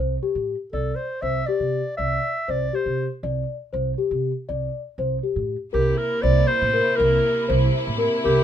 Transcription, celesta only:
Already playing: C5
0.23 G4
0.73 D5
1.23 C5
1.49 G4
1.98 D5
2.48 C5
2.73 G4
3.24 D5
3.73 C5
3.98 G4
4.49 D5
4.99 C5
5.23 G4
5.73 A#4
6.23 C5
6.73 A#4
6.98 A#4
7.48 C5
7.98 A#4
8.24 A#4

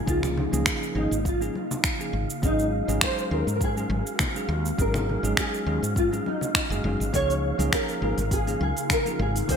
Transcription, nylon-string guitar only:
0.09 F4
0.98 D#4
1.28 F4
2.45 D#4
3.04 C5
3.33 A#4
3.56 A#4
3.64 G#4
4.81 A#4
5.40 G#4
5.98 F4
6.27 D#4
7.15 C#5
7.74 A#4
8.03 A#4
8.33 G#4
8.62 G#4
8.92 A#4
9.21 G#4
9.51 C5

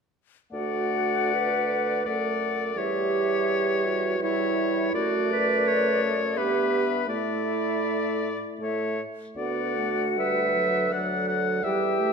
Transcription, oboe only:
0.53 D5
2.06 D5
2.78 C#5
4.22 C#5
4.94 D5
5.67 C#5
6.37 B4
7.09 D5
8.61 C#5
9.37 D5
10.19 E5
10.92 F#5
11.28 F#5
11.64 E5

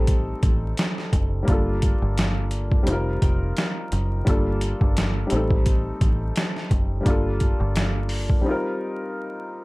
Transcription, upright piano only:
Already playing: G3 A3 C4 D#4 A4
1.43 G3 A#3
1.47 D4 F4
1.52 A4
2.83 G3 C4
2.88 D#4 F4
2.92 A#4
4.25 G3 A#3 D4 F4
4.30 A4
5.27 G3 A3
5.31 C4 D#4
5.36 A4
7.01 G3 A#3
7.05 D4 F4
7.10 A4
8.41 G3 C4
8.46 D#4 F4
8.51 A#4

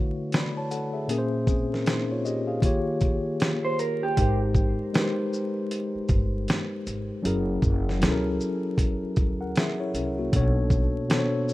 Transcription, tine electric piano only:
Already playing: D3 A3 E4 F#4 B4 C#5
0.34 D5 B5
0.57 C#5 A5
0.71 A4 F#5
0.93 G#4 E5
1.07 A#2 A#3 C#4 G#4
1.12 A#4
1.18 C5
1.49 C4 G#4
1.73 C#4 A#4
1.87 D#4 C5
2.11 F4 C#5
2.25 G4 D#5
2.47 G#4 F5
2.62 D#3 A#3 F4 G4
2.66 C#5
4.17 G#3 D#4 G4 A#4
4.21 C5
4.93 G#3 D#4 G4 A#4
4.97 B4
5.04 C5
7.22 F#3 C#4 E4 G#4
7.27 A#4
8.00 F#3 C#4 E4 G#4
8.04 A4
8.11 A#4
9.41 A#4 F#5
9.58 G#4 E5
9.80 E4 C#5
9.95 C#4 A#4
10.18 A#3 F#4
10.32 B2 B3 D4 A4
10.36 C#5
11.08 B2 B3 D4 A4
11.12 C5
11.19 C#5

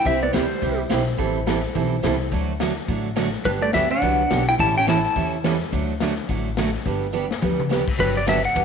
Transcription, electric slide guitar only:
0.06 E5
0.23 D5
0.34 C5
3.45 B4
3.62 D5
3.74 E5
3.91 F#5
4.49 G5
4.60 A5
4.78 G5
4.89 A5
8.00 B4
8.17 D5
8.29 E5
8.45 F#5

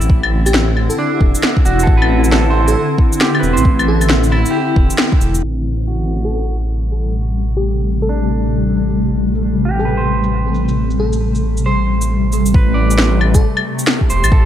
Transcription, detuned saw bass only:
0.01 A1
1.21 E1
1.66 E1
1.87 A1
3.43 E1
3.57 A1
4.76 E1
5.21 E1
5.43 A1
12.54 A1
14.10 E1
14.24 A1

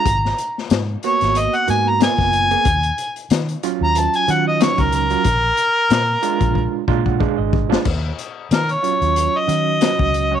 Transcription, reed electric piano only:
1.04 A#3 B3 F#4
1.67 A#3 B3 F#4
2.00 A#3 B3 F4
2.51 A#3 B3 G#4
3.64 F#3 C#4 F4
4.28 F#3 C#4 F4
4.60 F#3 C#4 D#4
5.10 F#3 C#4 F4
6.23 G#3 D4 F4
6.87 G#3 D4 F4 A#5
7.05 F#5
7.20 G#3 D4 G#4 F5
7.38 D#5
7.70 G#3 D4 F4
8.83 F#3 C#4 F4
9.48 F#3 C#4 F#4
9.81 F#3 C#4 F#4
10.31 F#3 C#4 F#4

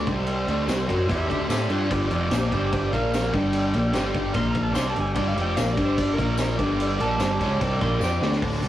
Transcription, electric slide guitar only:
Already playing: D5
1.11 G4 E5
1.30 G4 E5
1.49 G4 E5
1.71 F4 D5
1.90 F4 D5
2.11 F4 D5
2.31 G4 C5
2.53 G4 C5
2.74 G4 C5
2.91 F5
4.36 C6
4.51 A#5
4.63 A5
4.75 C6
4.90 A5
5.00 G#5
5.15 G5
5.28 F5
5.42 G5
5.57 F5
5.71 D5
5.86 C5
6.01 D5
6.13 A#4
7.01 A5
7.81 C6
8.04 G5

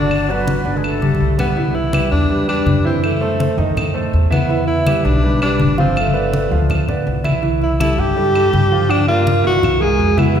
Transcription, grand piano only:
Already playing: D3 D4
0.28 F#3 F#4
0.65 D4 D5
1.01 G3 G4
1.38 G3 G4
1.56 E3 E4 E5
1.93 G3 G4 B4
2.29 G3 G4 B4
2.47 G3 G4 B4
2.84 E3 E4 E5
3.21 A3 A4 C5
3.39 A3 A4 C5
3.57 D#3 D#4 D#5
3.94 A3 A4 C5
4.30 E3 E4 E5
4.49 E3 E4 E5
4.86 G3 G4 B4
5.23 G3 G4 B4
5.41 G3 G4 B4
5.78 F3 F4 F5
6.14 B3 B4 D5
6.33 B3 B4 D5
6.51 F3 F4 F5
6.88 B3 B4 D5
7.24 E3 E4 E5
7.42 E3 E4 E5
7.80 G3 G4 A4
8.16 G3 G4 A4
8.34 G3 G4 A4
8.72 F3 F4 F5
9.08 A#3 A#4 D5
9.26 A#3 A#4 D5
9.44 E3 E4 E5
9.80 G#3 G#4 A#4
10.17 E3 E4 E5
10.36 E3 E4 E5

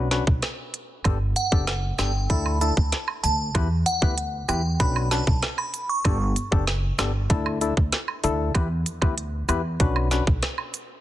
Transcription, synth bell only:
1.36 F#5
1.99 G5
2.30 B5
2.61 A5
3.23 A5
3.86 F#5
4.49 G5
4.80 B5
5.11 A5
5.58 B5
5.89 C#6

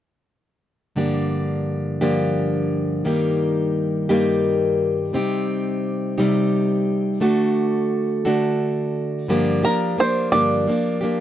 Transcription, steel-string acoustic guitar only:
0.96 G2 D3 F3 A#3 D4 G4
2.01 G2 D3 F3 A#3 D4 G4
3.04 G2 D#3 G3 A#3 D#4 G4
4.09 G2 D#3 G3 A#3 D#4 G4
5.13 C3 G3 C4 D#4 G4
6.18 C3 G3 C4 D#4 G4
7.20 D3 A3 D4 F#4 A4
8.25 D3 A3 D4 F#4 A4
9.28 G2 D3 F3 A#3 D4 G4
9.63 F3 A#3 D4 G4
9.97 F3 A#3 D4 G4
10.32 G2 D3 F3 A#3 D4 G4
10.67 F3 A#3 D4 G4
11.01 F3 A#3 D4 G4

